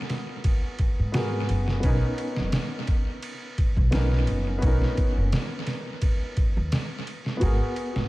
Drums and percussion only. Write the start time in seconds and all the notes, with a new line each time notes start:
0.10 snare, ride
0.44 kick, ride
0.79 kick, ride
1.14 snare, ride
1.49 ride
1.68 snare
1.83 kick, ride
2.18 ride
2.36 snare
2.52 snare, ride
2.87 kick, ride
3.22 ride
3.58 kick, ride
3.77 kick
3.92 snare, ride
4.12 snare
4.27 ride
4.62 kick, ride
4.82 snare
4.97 kick, ride
5.32 snare, ride
5.67 snare, ride
6.02 kick, ride
6.37 kick, ride
6.72 snare, ride
7.07 ride
7.26 snare
7.41 kick, ride
7.76 ride
7.96 snare